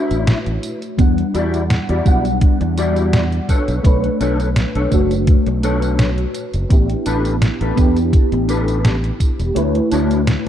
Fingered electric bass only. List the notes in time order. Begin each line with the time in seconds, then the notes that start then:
0.11 A1
0.47 A1
0.99 E2
1.34 E2
1.89 E2
2.06 B1
2.41 muted fingered electric bass stroke
2.61 E2
3.68 B1
3.84 B1
4.21 B1
4.75 B1
4.92 F#1
5.47 B1
6.54 F#1
6.70 A1
7.06 A1
7.61 A1
7.77 E2
8.13 muted fingered electric bass stroke
8.32 A1
9.40 E1
9.56 D2
9.92 D2